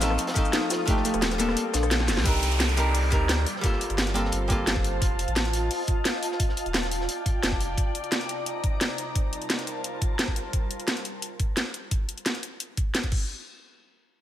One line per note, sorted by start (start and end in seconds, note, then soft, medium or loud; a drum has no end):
0.00 0.17 A1 medium
0.00 0.33 F3 medium
0.00 0.34 A3 medium
0.00 0.34 C4 medium
0.00 0.34 D#4 medium
0.00 0.86 A4 medium
0.00 0.35 A4 loud
0.00 1.53 F5 medium
0.00 0.86 D#6 medium
0.00 snare loud
0.00 closed hi-hat medium
0.00 cabasa medium
0.10 cross-stick medium
0.18 closed hi-hat medium
0.18 closed hi-hat loud
0.27 snare loud
0.27 closed hi-hat medium
0.34 0.84 F3 loud
0.34 0.85 A3 medium
0.34 0.86 C4 medium
0.34 0.86 D#4 medium
0.34 kick loud
0.34 closed hi-hat medium
0.34 cabasa medium
0.38 0.87 A4 loud
0.45 cabasa soft
0.53 0.63 D#4 medium
0.53 snare loud
0.53 closed hi-hat medium
0.53 closed hi-hat loud
0.70 0.86 F4 medium
0.70 snare loud
0.70 closed hi-hat medium
0.70 cabasa medium
0.86 1.36 F3 medium
0.86 1.37 A3 medium
0.86 1.03 A3 medium
0.86 1.37 D4 medium
0.86 1.38 D#4 medium
0.86 2.24 A4 medium
0.86 2.24 G5 medium
0.86 kick loud
0.86 closed hi-hat loud
0.90 1.38 G4 loud
0.96 snare soft
1.05 1.15 A3 loud
1.05 closed hi-hat medium
1.05 cabasa medium
1.14 1.56 D#1 medium
1.14 cross-stick soft
1.14 closed hi-hat soft
1.14 cabasa soft
1.22 snare loud
1.22 closed hi-hat loud
1.22 closed hi-hat medium
1.31 cross-stick soft
1.31 snare medium
1.31 closed hi-hat soft
1.38 1.71 G3 medium
1.38 1.72 A#3 medium
1.38 1.56 A#3 medium
1.38 1.72 C4 medium
1.38 1.72 D4 medium
1.38 1.72 A4 loud
1.38 closed hi-hat medium
1.38 cabasa medium
1.48 cross-stick medium
1.48 snare soft
1.57 closed hi-hat medium
1.57 closed hi-hat loud
1.74 2.10 A#1 loud
1.74 1.90 D4 medium
1.74 snare loud
1.74 closed hi-hat medium
1.74 cabasa medium
1.83 cross-stick medium
1.83 cabasa soft
1.91 snare loud
1.91 closed hi-hat loud
1.91 closed hi-hat medium
2.00 snare soft
2.08 2.19 F1 medium
2.08 snare medium
2.08 closed hi-hat medium
2.08 open hi-hat medium
2.08 cabasa medium
2.17 2.25 D2 loud
2.17 snare medium
2.24 3.13 C2 loud
2.24 2.74 G3 medium
2.24 2.75 C4 medium
2.24 2.75 D4 medium
2.24 2.76 D#4 medium
2.24 kick loud
2.24 closed hi-hat medium
2.24 downlifter medium
2.28 2.77 A#4 loud
2.43 closed hi-hat medium
2.52 closed hi-hat soft
2.60 snare loud
2.60 closed hi-hat medium
2.69 closed hi-hat soft
2.76 3.09 G3 medium
2.76 3.10 C4 medium
2.76 3.10 D4 medium
2.76 3.10 D#4 medium
2.76 3.10 A#4 loud
2.76 closed hi-hat medium
2.95 closed hi-hat loud
2.95 open hi-hat medium
3.10 3.45 D2 loud
3.10 3.45 G3 loud
3.10 3.45 C4 medium
3.10 3.45 D4 medium
3.10 3.46 D#4 medium
3.10 3.46 A#4 loud
3.10 kick loud
3.10 closed hi-hat medium
3.29 snare loud
3.29 closed hi-hat medium
3.29 closed hi-hat loud
3.46 7.74 F4 medium
3.46 5.00 C5 medium
3.46 7.74 A5 medium
3.46 closed hi-hat medium
3.56 snare soft
3.61 4.12 G3 medium
3.61 4.13 A#3 medium
3.61 4.14 F4 medium
3.61 kick loud
3.61 closed hi-hat medium
3.66 4.14 A4 loud
3.73 snare soft
3.81 closed hi-hat medium
3.90 4.31 G1 medium
3.90 closed hi-hat soft
3.98 snare loud
3.98 closed hi-hat medium
4.07 snare soft
4.07 closed hi-hat soft
4.14 4.47 G3 medium
4.14 4.47 A#3 medium
4.14 4.48 C4 medium
4.14 4.48 F4 medium
4.14 4.48 A4 loud
4.14 closed hi-hat medium
4.25 snare soft
4.32 5.00 G1 medium
4.32 closed hi-hat medium
4.32 closed hi-hat loud
4.48 4.99 G3 medium
4.48 4.99 A#3 medium
4.48 5.00 C4 medium
4.48 5.00 F4 medium
4.48 kick loud
4.48 closed hi-hat medium
4.52 5.01 A4 loud
4.67 snare loud
4.67 closed hi-hat medium
4.76 kick medium
4.84 closed hi-hat medium
5.02 5.26 F1 medium
5.02 6.38 D#5 medium
5.02 kick loud
5.02 closed hi-hat medium
5.19 closed hi-hat medium
5.28 5.69 A1 medium
5.28 closed hi-hat soft
5.36 snare loud
5.36 closed hi-hat medium
5.45 closed hi-hat soft
5.53 closed hi-hat medium
5.71 closed hi-hat medium
5.71 open hi-hat medium
5.87 kick loud
5.87 closed hi-hat medium
6.05 snare loud
6.05 closed hi-hat medium
6.23 closed hi-hat medium
6.32 snare soft
6.40 8.96 D5 medium
6.40 7.76 G5 medium
6.40 kick loud
6.40 closed hi-hat medium
6.49 snare soft
6.57 closed hi-hat medium
6.66 7.07 D#1 medium
6.66 closed hi-hat soft
6.74 snare loud
6.74 closed hi-hat medium
6.83 snare medium
6.83 closed hi-hat soft
6.92 closed hi-hat medium
7.01 snare soft
7.09 closed hi-hat medium
7.26 kick loud
7.26 closed hi-hat medium
7.43 7.76 F1 medium
7.43 snare loud
7.43 closed hi-hat medium
7.52 kick medium
7.61 closed hi-hat medium
7.78 kick loud
7.78 closed hi-hat medium
7.95 closed hi-hat medium
8.04 closed hi-hat soft
8.12 snare loud
8.12 closed hi-hat medium
8.21 closed hi-hat soft
8.29 closed hi-hat medium
8.46 closed hi-hat medium
8.64 kick loud
8.64 closed hi-hat medium
8.81 snare loud
8.81 closed hi-hat medium
8.98 10.52 G3 medium
8.98 10.52 F4 medium
8.98 10.52 A#4 medium
8.98 10.52 C5 medium
8.98 10.52 A5 medium
8.98 closed hi-hat medium
9.15 kick loud
9.15 closed hi-hat medium
9.33 closed hi-hat medium
9.42 closed hi-hat soft
9.50 snare loud
9.50 closed hi-hat medium
9.59 closed hi-hat soft
9.67 closed hi-hat medium
9.84 closed hi-hat medium
10.02 kick loud
10.02 closed hi-hat medium
10.19 snare loud
10.19 closed hi-hat medium
10.28 kick medium
10.36 closed hi-hat medium
10.53 kick loud
10.53 closed hi-hat medium
10.71 closed hi-hat medium
10.80 closed hi-hat soft
10.88 snare loud
10.88 closed hi-hat medium
10.97 closed hi-hat soft
11.05 closed hi-hat medium
11.22 closed hi-hat medium
11.40 kick medium
11.40 closed hi-hat medium
11.57 snare loud
11.57 closed hi-hat medium
11.74 closed hi-hat medium
11.91 kick loud
11.91 closed hi-hat medium
12.09 closed hi-hat medium
12.18 closed hi-hat soft
12.26 snare loud
12.26 closed hi-hat medium
12.35 closed hi-hat soft
12.43 closed hi-hat medium
12.60 closed hi-hat medium
12.77 kick medium
12.77 closed hi-hat medium
12.95 snare loud
12.95 closed hi-hat medium
13.04 kick medium
13.04 closed hi-hat soft
13.12 kick loud
13.12 crash medium